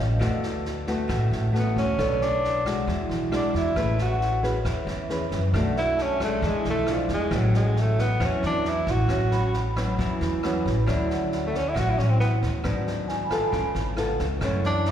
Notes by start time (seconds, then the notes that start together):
Already playing: A2 D#5 F5
0.00 A1
0.19 D2 D3 A3 B3 F#4, kick, cross-stick, snare
0.43 snare
0.65 snare
0.87 A3 B3 F#4, kick, snare
1.08 A1 A2, kick, cross-stick, snare
1.31 A1, snare
1.53 A3 B3 F#4, snare
1.59 B3
1.76 D2 C#4, kick, snare
1.99 B1 B3 D4 A4 C#5, kick, cross-stick, snare
2.21 D4, snare
2.44 snare
2.65 G#3 D4 F#4, kick, cross-stick, snare
2.87 E2 E3, kick, snare
3.09 B1, snare
3.31 G#3 D4 F#4, cross-stick, snare
3.36 D4
3.54 E2 E4, kick, snare
3.76 A1 A3 C#4 G#4 B4, kick, cross-stick, snare
3.98 F#4, snare
4.21 snare
4.42 C#4 G#4 B4, kick, snare
4.65 E2 E3, kick, cross-stick, snare
4.87 E2 E5, snare
5.09 C#4 G#4 B4, snare
5.31 F#2, kick, snare
5.54 B1 B2 A3 D4 F#4, kick, cross-stick, snare
5.76 E4, snare
5.97 A5, snare
6.02 C#4
6.20 G#3 A3 D4, kick, cross-stick, snare
6.42 E2 E3, kick, snare
6.47 G#3
6.65 B1, snare
6.70 A3
6.86 G#3 D4 F4, cross-stick, snare
6.94 F3
7.09 E2, kick, snare
7.14 G#3
7.31 A1 A2 F#3 B3 C#4, kick, cross-stick, snare
7.37 F#3
7.54 G#3, snare
7.76 snare
7.81 A3
7.98 B3, kick, snare
8.20 E2 E3 F#3 B3 C#4, kick, cross-stick, snare
8.26 C#4
8.43 E2 D4, snare
8.65 snare
8.69 E4
8.87 A1, kick, snare
8.91 F#4
9.09 A1 A2 F#3 B3 C#4, kick, cross-stick, snare
9.31 B5, snare
9.53 snare
9.76 F#3 B3 C#4, kick, cross-stick, snare
9.99 E2 E3, kick, snare
10.21 E2, snare
10.43 F#3 B3 C#4, cross-stick, snare
10.65 A1, kick, snare
10.86 D2 D3 F#3 C#4 E4, kick, cross-stick, snare
11.10 F#5, snare
11.32 snare
11.47 A3
11.54 C#4, kick, snare
11.69 E4
11.74 A1 A2 F#3 C#4 E4, kick, cross-stick, snare
11.79 F#4
11.90 E4
11.98 A1 C#4, snare
12.10 C4
12.20 B3, snare
12.42 D2, kick, snare
12.64 G#1 G#2 F#3 B3 D4, kick, cross-stick, snare
12.87 snare
13.08 G#5, snare
13.25 B5
13.30 B3 F4 A4, kick, cross-stick, snare
13.52 C#2 C#3, kick, snare
13.75 G#1, snare
13.97 B3 F4 A4, cross-stick, snare
14.19 C#2, kick, snare
14.41 F#2 E3 A3 C#4, kick, cross-stick, snare
14.64 D4, snare
14.85 snare